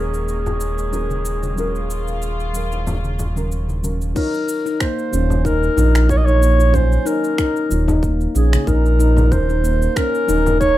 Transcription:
Already playing: D#1 D#3 F#3 G#3 A#3 C#4 G#4
0.00 A#4
0.14 shaker
0.28 shaker
0.46 low conga, shaker
0.60 shaker
0.78 shaker
0.91 F#3 C#4 A#4, high bongo, shaker
1.10 high conga, shaker
1.25 shaker
1.43 high bongo, high conga, shaker
1.55 F#3 C#4 F4 A#4, high bongo, shaker
1.75 shaker
1.90 shaker
2.08 high conga, shaker
2.22 shaker
2.40 shaker
2.53 F#3 C#4 A#4, shaker
2.72 high bongo, shaker
2.87 low conga, shaker
3.04 high conga, shaker
3.19 low conga, shaker
3.35 F#3 C#4 A#4, high conga, shaker
3.52 shaker
3.69 high conga, shaker
3.82 F#3 C#4 A#4, high conga, shaker
4.01 shaker
4.14 F#3 D#4 F4 A#4 C#5, kick, crash, high bongo, shaker
4.34 shaker
4.49 shaker
4.66 D#4, shaker
4.80 A#3 C5, finger snap, kick, shaker
4.99 shaker
5.11 D#1 F#3 C#4 F4, shaker
5.30 low conga, shaker
5.45 D#4 A#4, kick, shaker
5.63 shaker
5.77 A#1 D#4, low conga, shaker
5.95 finger snap, shaker
6.08 F#3 F4 C#5, kick, high bongo, shaker
6.17 D#5
6.25 D#4 C#5, shaker
6.41 A#3, shaker
6.59 high bongo, shaker
6.72 F#3 C#4 F4 C5, kick, high bongo, shaker
6.76 C#4
6.92 shaker
7.05 D#4 A#4, shaker
7.24 shaker
7.38 D#4, finger snap, kick, shaker
7.56 shaker
7.69 D#1 F#3 F4 C#5, shaker
7.88 D#4, high bongo, low conga, shaker
8.03 A#3, kick, shaker
8.21 shaker
8.35 A#1 C#4 G#4, shaker
8.53 finger snap, high conga, shaker
8.67 A#1 D#4 A#4, kick, shaker
8.86 shaker
8.99 D#4, shaker
9.17 high conga, low conga, shaker
9.30 D#1 F#3 C#4 A#4 C5, kick, high bongo, shaker
9.49 D#4, shaker
9.64 A#3, shaker
9.82 shaker
9.96 C#4 A#4, finger snap, kick, shaker
10.15 shaker
10.27 D#1 F#3 C#4 D#4 A#4, shaker
10.46 low conga, shaker
10.60 D#4 C#5, kick, shaker

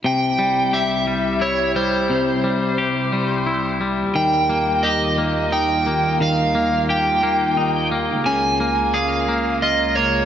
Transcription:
0.04 C2 C3 G3 E4 G4 G5
0.39 G3
0.73 G4 E5
1.07 G3
1.41 E4 C#5
1.76 G3 C5
2.10 C3
2.44 G3
2.78 G4
3.12 G3
3.46 E4
3.81 G3
4.15 D#2 D#3 F4 A#4 G5
4.50 A#3
4.83 G4 D#5
5.18 A#3
5.52 D#4 G5
5.87 A#3
6.21 D#3 F5
6.55 A#3
6.89 G4 G5
7.23 A#3
7.57 D#4
7.92 A#3
8.26 C#2 C#3 G#3 A#4 G#5
8.60 A#3
8.94 G#4 F5
9.29 A#3
9.62 F4 D#5
9.95 A#3 C#5

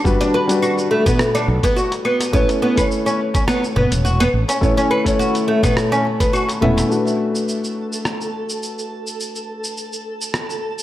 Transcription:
Already playing: G3 D4 F#4 B4
0.04 G1 G3 D4 F#4 B4, kick, cabasa
0.21 D4, closed hi-hat, darbuka ka, cabasa
0.34 B4, darbuka ka
0.47 G3 D4 F#4 B4, closed hi-hat, cabasa
0.62 F#4, cabasa, claves
0.77 darbuka tek, cabasa
0.91 A3
1.06 B3, kick, closed hi-hat, darbuka tek, darbuka dum, cabasa
1.19 cross-stick, cabasa
1.35 D4, cabasa, claves
1.48 B1, darbuka ka
1.63 B3, kick, closed hi-hat, cabasa
1.76 F#4, cabasa
1.92 closed hi-hat, darbuka ka, darbuka tek, cabasa
2.05 B3, claves
2.20 closed hi-hat, darbuka ka, darbuka tek, cabasa
2.33 A1 A3 B3 C#4 E4 C#5, kick, cabasa
2.49 closed hi-hat, darbuka ka, cabasa
2.62 B3, darbuka ka
2.75 A3 C#4 E4 B4, kick, closed hi-hat, cabasa, claves
2.80 C#5
2.91 cabasa
3.06 C#4, darbuka tek, cabasa
3.34 C#4, kick, closed hi-hat, darbuka tek, cabasa
3.48 B3, cross-stick, cabasa, claves
3.64 cabasa
3.76 F#1 B3, darbuka ka, darbuka dum
3.92 E1, closed hi-hat, cabasa
4.05 F#4, cabasa
4.20 B3, closed hi-hat, darbuka tek, cabasa, claves
4.34 A1
4.48 C#4, closed hi-hat, darbuka ka, darbuka tek, cabasa
4.61 A1 A3 C#4 E4 C#5, kick, cabasa
4.77 C#4, closed hi-hat, darbuka ka, cabasa
4.91 B4, darbuka ka, claves
5.04 A3 C#4 E4 C#5, kick, closed hi-hat, cabasa
5.19 F#4, cabasa
5.35 closed hi-hat, darbuka tek, cabasa
5.48 A3
5.63 B3, kick, closed hi-hat, darbuka tek, darbuka dum, cabasa, claves
5.77 cross-stick, cabasa
5.92 C#4, darbuka tek, cabasa
6.05 darbuka ka
6.20 B3, kick, closed hi-hat, cabasa
6.33 F#4, cabasa, claves
6.49 closed hi-hat, darbuka ka, darbuka tek, cabasa
6.61 E1 A3 B3 C#4 E4 E5, darbuka dum
6.77 closed hi-hat, darbuka ka, darbuka tek, cabasa
6.89 A3 D4 F#4 A4 B4, cabasa
7.07 cabasa
7.36 cabasa
7.49 cabasa
7.64 cabasa
7.93 cabasa
8.05 cross-stick, cabasa
8.21 cabasa
8.50 cabasa
8.63 cabasa
8.79 cabasa
9.07 cabasa
9.20 cabasa
9.36 cabasa
9.64 cabasa
9.78 cabasa
9.93 cabasa
10.22 cabasa
10.34 cross-stick, cabasa
10.50 cabasa
10.79 cabasa

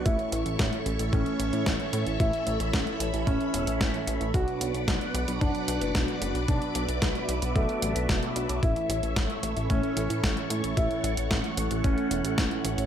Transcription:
Already playing: C#6
0.05 A1 A2 E3 A3 C#4 E4 A4 C#5 E5, kick, closed hi-hat
0.19 closed hi-hat
0.32 A1, closed hi-hat
0.46 A1, closed hi-hat
0.59 A1, kick, snare, closed hi-hat
0.73 closed hi-hat
0.86 A1, closed hi-hat
0.99 A1 A2 E3 A3 C#4 E4, closed hi-hat
1.12 A2 C#4, kick, closed hi-hat
1.26 closed hi-hat
1.40 A1, closed hi-hat
1.53 A2, closed hi-hat
1.66 A1, kick, snare, closed hi-hat
1.80 closed hi-hat
1.93 A2, closed hi-hat
2.06 A1, closed hi-hat
2.20 A1 A2 E3 A3 C#4 E4 B5, kick, closed hi-hat
2.33 closed hi-hat
2.47 A1, closed hi-hat
2.60 A1, closed hi-hat
2.73 A1, kick, snare, closed hi-hat
2.87 closed hi-hat
3.00 A1, closed hi-hat
3.13 A1 A2 E3 A3 C#4 E4, closed hi-hat
3.27 A1 C#4, kick, closed hi-hat
3.41 closed hi-hat
3.54 E1, closed hi-hat
3.67 A1, closed hi-hat
3.81 A1, kick, snare, closed hi-hat
3.94 closed hi-hat
4.07 A1, closed hi-hat
4.21 A1, closed hi-hat
4.34 B1 B2 F#3 B3 D4 F#4 B4 D5 F#5 D6, kick, closed hi-hat
4.48 closed hi-hat
4.61 B1, closed hi-hat
4.74 B1, closed hi-hat
4.88 B1, kick, snare, closed hi-hat
5.01 closed hi-hat
5.14 B1, closed hi-hat
5.28 B1 B2 F#3 B3 D4 F#4, closed hi-hat
5.41 F#1 D4, kick, closed hi-hat
5.55 closed hi-hat
5.68 B1, closed hi-hat
5.81 F#1, closed hi-hat
5.95 B1, kick, snare, closed hi-hat
6.08 closed hi-hat
6.21 F#1, closed hi-hat
6.35 B1, closed hi-hat
6.48 B1 B2 F#3 B3 D4 F#4 E5, kick, closed hi-hat
6.62 closed hi-hat
6.75 B1, closed hi-hat
6.88 B1, closed hi-hat
7.02 B1, kick, snare, closed hi-hat
7.15 closed hi-hat
7.29 B1, closed hi-hat
7.42 B1 B2 F#3 B3 D4 F#4, closed hi-hat
7.56 B1 A3, kick, closed hi-hat
7.69 closed hi-hat
7.82 A1, closed hi-hat
7.96 B1, closed hi-hat
8.09 F#1, kick, snare, closed hi-hat
8.23 closed hi-hat
8.36 B1 F#3 B3 D4 F#4, closed hi-hat
8.49 B1, closed hi-hat
8.63 A1 A2 E3 A3 C#4 E4 A4 C#5 C#6, kick, closed hi-hat
8.76 closed hi-hat
8.89 A1, closed hi-hat
9.03 A1, closed hi-hat
9.16 A1, kick, snare, closed hi-hat
9.30 closed hi-hat
9.43 A1, closed hi-hat
9.56 A1 A2 E3 A3 C#4 E4, closed hi-hat
9.70 A2 C#4, kick, closed hi-hat
9.83 closed hi-hat
9.97 A1, closed hi-hat
10.10 A2, closed hi-hat
10.23 A1, kick, snare, closed hi-hat
10.37 closed hi-hat
10.50 A2, closed hi-hat
10.64 A1, closed hi-hat
10.77 A1 A2 E3 A3 C#4 E4 F#5, kick, closed hi-hat
10.91 closed hi-hat
11.04 A1, closed hi-hat
11.17 A1, closed hi-hat
11.31 A1, kick, snare, closed hi-hat
11.44 closed hi-hat
11.57 A1, closed hi-hat
11.71 A1 A2 E3 A3 C#4 E4, closed hi-hat
11.84 A1 C#4, kick, closed hi-hat
11.98 closed hi-hat
12.11 E1, closed hi-hat
12.24 A1, closed hi-hat
12.38 A1, kick, snare, closed hi-hat
12.51 closed hi-hat
12.65 A1, closed hi-hat
12.78 A1, closed hi-hat

